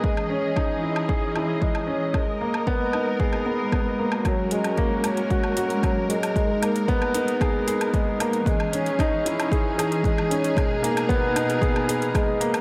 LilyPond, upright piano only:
\new Staff \with { instrumentName = "Upright piano" } { \time 4/4 \key gis \minor \tempo 4 = 114 gis8 cis'8 dis'8 e'8 gis'8 e'8 gis8 cis'8 | gis8 ais8 b8 dis'8 gis'8 b8 b8 ais8 | fis8 gis8 ais8 cis'8 fis'8 fis'8 fis8 gis8 | gis8 ais8 b8 dis'8 gis'8 gis'8 gis8 ais8 |
gis8 cis'8 dis'8 e'8 gis'8 gis'8 gis8 cis'8 | gis8 ais8 b8 dis'8 gis'8 gis'8 gis8 ais8 | }